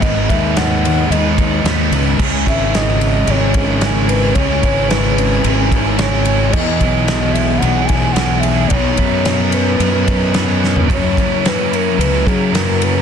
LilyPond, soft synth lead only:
\new Staff \with { instrumentName = "Soft synth lead" } { \time 4/4 \key cis \dorian \tempo 4 = 110 dis''8 e''8 fis''4 dis''4. r8 | r8 e''8 dis''4 cis''4 r8 b'8 | cis''4 b'4. r8 cis''4 | dis''4. e''8 fis''8 gis''8 fis''8 e''8 |
cis''4. b'2 r8 | cis''4 b'8 ais'8 b'8 gis'8 ais'8 b'8 | }